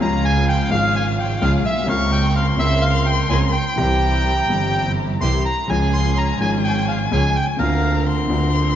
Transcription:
0.00 0.68 C#2 loud
0.00 0.67 C#3 loud
0.00 0.67 F3 medium
0.00 0.68 G#3 medium
0.00 0.68 C#4 medium
0.00 0.68 F4 medium
0.00 0.69 F4 medium
0.00 0.68 G#4 medium
0.00 1.89 F5 loud
0.00 0.25 A#5 loud
0.25 0.46 G#5 loud
0.49 0.70 G5 loud
0.69 1.38 G#1 medium
0.69 1.38 G#1 loud
0.69 1.38 G#2 loud
0.69 1.37 C#3 medium
0.69 1.37 F3 medium
0.69 1.38 G#3 medium
0.69 1.38 C#4 medium
0.69 1.38 F4 medium
0.69 1.39 F4 medium
0.69 1.38 G#4 medium
0.69 0.95 F5 loud
0.96 1.06 G#5 loud
1.20 1.43 G5 medium
1.41 1.61 C#2 loud
1.41 1.61 C#3 medium
1.41 1.61 F3 medium
1.41 1.61 G#3 medium
1.41 1.61 C#4 medium
1.41 1.61 F4 medium
1.41 1.62 F4 medium
1.41 1.62 G#4 loud
1.41 1.52 F5 loud
1.65 1.88 B1 medium
1.65 1.87 E5 loud
1.71 1.77 A#1 medium
1.77 1.83 B1 medium
1.82 1.89 C2 medium
1.82 2.55 C#3 loud
1.87 2.55 C#2 loud
1.87 2.56 C#2 loud
1.87 2.55 A#3 medium
1.87 2.56 C4 medium
1.87 2.56 F4 medium
1.87 2.56 A#4 loud
1.87 2.11 F5 medium
1.87 2.37 C#6 loud
2.12 2.34 G5 loud
2.35 2.46 F5 loud
2.35 3.79 C6 loud
2.56 3.26 C#2 loud
2.56 3.26 C#2 medium
2.56 2.58 C#3 medium
2.56 3.26 C#3 medium
2.56 3.26 A#3 medium
2.56 3.27 C4 medium
2.56 3.27 A#4 loud
2.56 2.84 E5 loud
2.61 3.27 F4 medium
2.82 3.07 F5 loud
3.06 3.28 G5 medium
3.29 3.50 C#2 loud
3.29 3.50 C#3 medium
3.29 3.50 A#3 medium
3.29 3.50 C4 medium
3.29 3.50 C#4 medium
3.29 3.50 F4 medium
3.29 3.50 A#4 loud
3.29 3.40 G#5 loud
3.52 4.92 G5 loud
3.76 4.45 C2 loud
3.76 4.45 C2 medium
3.76 4.45 C3 loud
3.76 4.44 E3 medium
3.76 4.45 G3 medium
3.76 4.45 C4 medium
3.76 4.46 C4 medium
3.76 4.45 E4 medium
3.76 4.46 G4 loud
3.76 4.46 G4 medium
3.76 5.45 A#5 loud
4.47 5.17 G1 loud
4.47 5.17 G1 medium
4.47 5.18 G2 medium
4.47 5.17 E3 medium
4.47 5.17 G3 medium
4.47 5.17 C4 medium
4.47 5.18 C4 medium
4.47 5.17 E4 medium
4.47 5.17 G4 medium
4.47 5.19 G4 medium
5.21 5.41 C2 loud
5.21 5.41 C2 medium
5.21 5.41 C3 medium
5.21 5.41 E3 medium
5.21 5.41 G3 medium
5.21 5.41 C4 medium
5.21 5.41 E4 medium
5.21 5.41 G4 medium
5.21 5.43 C6 loud
5.45 5.70 A#5 loud
5.67 6.37 C#2 loud
5.67 6.37 C#2 medium
5.67 6.37 C#3 medium
5.67 6.36 F3 medium
5.67 6.37 G#3 medium
5.67 6.37 C#4 medium
5.67 6.38 C#4 medium
5.67 6.37 F4 medium
5.67 6.37 G#4 loud
5.67 7.60 G#5 loud
5.67 5.94 G#5 loud
5.72 6.38 G#4 medium
5.94 6.18 C6 loud
6.17 6.39 A#5 loud
6.38 7.08 G#1 loud
6.38 7.08 G#1 medium
6.38 7.08 G#2 medium
6.38 7.07 F3 medium
6.38 7.08 G#3 medium
6.38 7.08 C#4 medium
6.38 7.08 F4 medium
6.38 7.08 G#4 medium
6.38 7.09 G#4 medium
6.38 6.51 G#5 medium
6.64 6.86 G5 loud
6.88 6.99 F5 medium
7.11 7.32 C#2 loud
7.11 7.31 C#3 medium
7.11 7.31 F3 medium
7.11 7.32 G#3 medium
7.11 7.32 C#4 medium
7.11 7.32 F4 medium
7.11 7.32 G#4 medium
7.11 7.36 G#5 loud
7.36 7.46 G5 medium
7.58 8.26 D2 loud
7.58 8.26 D3 loud
7.58 8.26 A#3 medium
7.58 8.27 C4 medium
7.58 8.27 D4 medium
7.58 8.27 F4 medium
7.58 8.27 A#4 medium
7.58 8.03 F5 medium
7.58 8.08 A#5 loud
8.06 8.76 C6 loud
8.28 8.76 D2 loud
8.28 8.29 D3 medium
8.28 8.76 D3 medium
8.28 8.76 A#3 medium
8.28 8.76 C4 medium
8.28 8.76 D4 medium
8.28 8.76 A#4 loud
8.32 8.76 F4 medium

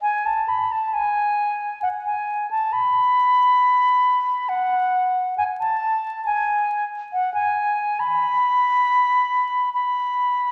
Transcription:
0.02 0.27 G#5 medium
0.26 0.50 A5 medium
0.48 0.73 B5 medium
0.72 0.95 A5 medium
0.94 1.82 G#5 medium
1.83 1.89 F#5 medium
2.05 2.49 G#5 medium
2.51 2.74 A5 medium
2.73 4.50 B5 medium
4.49 5.37 F#5 medium
5.38 5.44 G#5 medium
5.60 6.24 A5 medium
6.26 6.85 G#5 medium
7.13 7.33 F#5 medium
7.34 8.01 G#5 medium
8.00 9.73 B5 medium
9.73 10.52 B5 medium

